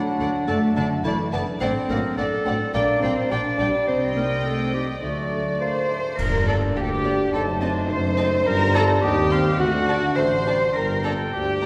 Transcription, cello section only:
0.00 0.47 D3 medium
0.47 0.76 A3 medium
0.76 1.04 D3 medium
1.05 1.33 E3 medium
1.61 1.69 C4 medium
1.90 2.18 A#3 medium
2.17 2.74 A3 medium
2.74 3.02 D4 medium
3.02 3.30 C4 medium
3.31 3.86 D4 medium
3.87 4.16 C4 medium
4.16 4.24 A#3 medium
4.45 4.73 A3 medium
4.74 5.03 G3 medium
5.02 5.60 F#3 medium
5.61 6.15 C5 medium
6.18 6.47 A#4 medium
6.47 6.55 A4 medium
6.76 6.79 G4 medium
6.82 6.90 A4 medium
6.89 7.33 G4 medium
7.33 7.41 A4 medium
7.61 7.89 D4 medium
7.89 8.46 C5 medium
8.46 8.74 A#4 loud
8.74 8.82 A4 loud
9.03 9.59 G4 loud
9.60 10.18 F#4 loud
10.17 10.75 C5 medium
10.75 11.04 A#4 medium
11.04 11.12 A4 medium
11.32 11.66 G4 medium

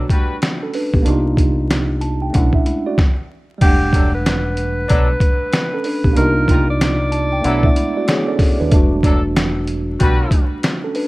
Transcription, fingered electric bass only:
0.94 1.03 B1 medium
1.07 2.30 C2 loud
2.35 2.59 B1 loud
3.62 4.85 E1 loud
4.91 5.14 B1 loud
6.04 6.14 B1 medium
6.18 7.41 C2 loud
7.45 7.69 B1 loud
8.61 8.70 D#2 medium
8.72 9.96 E1 loud
10.01 10.25 B1 loud

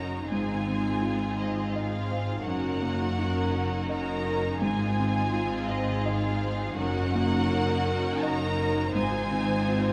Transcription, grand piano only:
0.00 0.26 F#2 soft
0.00 0.32 C#4 soft
0.00 0.32 A#4 soft
0.00 0.31 C#5 soft
0.00 0.15 D#5 soft
0.32 2.44 G#2 soft
0.67 1.24 C4 soft
1.02 1.60 F4 soft
1.39 1.96 C5 soft
1.76 2.33 D#5 soft
2.11 2.47 C5 soft
2.46 4.59 F#2 soft
2.82 3.40 A#3 soft
3.19 3.76 F#4 soft
3.55 4.12 A#4 soft
3.90 4.48 D#5 soft
4.25 4.62 A#4 soft
4.61 6.73 G#2 medium
4.98 5.56 C4 soft
5.33 5.91 F4 soft
5.69 6.27 C5 soft
6.06 6.63 D#5 soft
6.41 6.78 C5 soft
6.77 8.90 F#2 soft
7.14 7.72 A#3 soft
7.50 8.08 F#4 soft
7.86 8.44 A#4 soft
8.23 8.81 D#5 soft
8.59 8.95 A#4 soft
8.95 9.93 G#2 medium
9.31 9.89 C4 soft
9.69 9.93 F4 soft

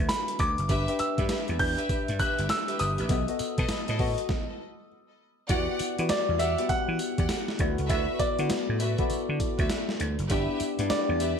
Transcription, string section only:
0.69 0.90 G4 loud
0.69 0.90 B4 medium
0.69 0.91 E5 loud
1.18 1.28 G4 medium
1.18 1.28 B4 medium
1.18 1.28 E5 medium
1.29 1.50 G4 medium
1.29 1.50 B4 medium
1.29 1.51 E5 medium
1.78 1.93 G4 medium
1.78 1.93 B4 medium
1.78 1.93 E5 medium
2.19 2.40 G4 medium
2.19 2.40 B4 medium
2.19 2.41 E5 loud
2.68 2.83 G4 medium
2.68 2.83 B4 medium
2.68 2.83 E5 medium
2.98 3.13 G4 medium
2.98 3.13 B4 medium
2.98 3.13 E5 medium
3.58 3.73 A4 medium
3.58 3.73 B4 medium
3.58 3.73 D#5 medium
3.88 4.03 A4 medium
3.88 4.03 B4 medium
3.88 4.03 D#5 medium
5.49 5.78 G4 loud
5.49 5.78 D5 medium
5.49 5.78 F#5 loud
6.39 6.60 G4 medium
6.39 6.61 D5 medium
6.39 6.61 F#5 medium
7.18 7.33 G4 medium
7.18 7.33 D5 medium
7.18 7.33 F#5 medium
7.89 8.18 F#4 loud
7.89 8.18 B4 loud
7.89 8.18 E5 loud
8.79 9.00 F#4 medium
8.79 9.01 B4 medium
8.79 9.01 E5 medium
9.58 9.73 F#4 medium
9.58 9.73 B4 medium
9.58 9.73 E5 medium
10.29 10.58 G4 loud
10.29 10.58 B4 medium
10.29 10.58 E5 loud
11.20 11.40 G4 medium
11.20 11.40 B4 medium
11.20 11.40 E5 medium

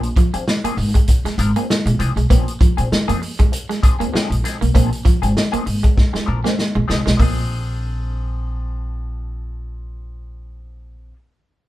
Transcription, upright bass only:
0.34 muted upright bass stroke soft
0.64 muted upright bass stroke soft
0.77 0.90 G#1 medium
1.24 muted upright bass stroke soft
1.38 1.51 G#1 loud
1.86 1.96 A#1 loud
1.99 2.12 C2 medium
2.16 2.27 B1 medium
2.30 2.43 A#1 medium
2.61 muted upright bass stroke soft
2.78 2.88 A#2 medium
2.92 muted upright bass stroke soft
3.09 3.19 F2 medium
3.40 3.50 C#2 medium
3.83 muted upright bass stroke soft
4.00 4.10 D2 medium
4.13 muted upright bass stroke soft
4.30 4.41 A#1 loud
4.62 4.72 B1 medium
4.75 4.88 A#1 loud
5.22 5.33 G#1 medium
5.53 muted upright bass stroke soft
5.67 5.80 G#1 medium
6.14 muted upright bass stroke soft
6.28 6.41 A#1 medium
6.76 6.86 A#1 loud
6.89 7.02 C2 medium
7.07 7.17 B1 medium
7.19 11.10 A#1 medium

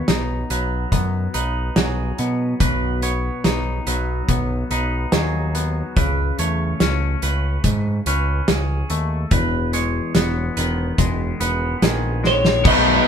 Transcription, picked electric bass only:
0.09 0.43 B1 medium
0.50 0.85 B1 medium
0.92 1.26 F#2 medium
1.35 1.69 B1 medium
1.77 2.11 B1 medium
2.19 2.53 B2 medium
2.60 3.29 B1 medium
3.45 3.79 B1 medium
3.87 4.21 B1 medium
4.28 4.63 B1 medium
4.71 5.05 B1 medium
5.13 5.81 D#2 medium
5.97 6.31 C#2 medium
6.39 6.73 E2 medium
6.81 7.15 C#2 medium
7.23 7.57 C#2 medium
7.64 7.98 G#2 medium
8.06 8.40 C#2 medium
8.48 8.82 C#2 medium
8.90 9.24 D#2 medium
9.31 9.99 E1 medium
10.15 10.49 E1 medium
10.57 10.91 E1 medium
10.98 11.32 E1 medium
11.41 11.74 E1 medium
11.82 12.65 A#1 medium
12.65 12.99 B1 loud

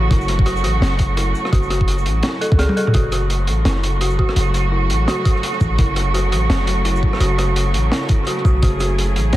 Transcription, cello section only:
0.00 2.90 C#3 medium
0.00 2.90 F#3 medium
0.00 2.90 A3 medium
0.00 2.92 F#4 medium
2.94 9.37 C#3 medium
2.94 9.37 F#3 medium
2.94 9.37 A3 medium
2.94 8.61 F#4 medium
8.63 9.37 G#4 medium

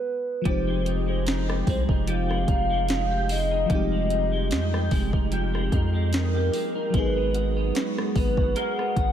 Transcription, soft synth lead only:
0.00 0.42 B4 loud
0.47 1.23 C5 loud
1.69 1.83 C5 medium
2.09 3.33 F5 loud
3.32 5.33 D#5 loud
6.15 6.98 A#4 loud
6.96 7.76 B4 loud
8.18 8.55 B4 loud
8.59 9.12 F#5 loud

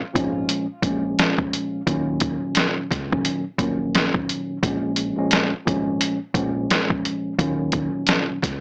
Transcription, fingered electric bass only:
0.02 muted fingered electric bass stroke soft
0.16 0.45 G#1 medium
0.83 1.13 A#1 medium
1.87 2.36 D#2 loud
2.77 muted fingered electric bass stroke soft
2.91 3.21 C#2 medium
3.59 4.08 A#1 medium
4.63 5.12 A#1 loud
5.54 muted fingered electric bass stroke soft
5.67 5.97 G#1 medium
6.34 6.65 A#1 medium
7.39 7.88 D#2 loud
8.29 muted fingered electric bass stroke soft
8.43 8.61 C#2 medium

